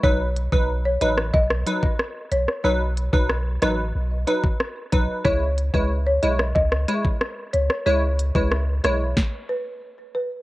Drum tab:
HH |--x---x---x---x-|--x---x---x---x-|--x---x---x---x-|--x---x---------|
SD |-------r-r--r--r|----r-r-----r---|-------r-r--r--r|----r-r-o-------|
BD |o--o----o--o----|---o-------o--o-|o--o----o--o----|---o----o-------|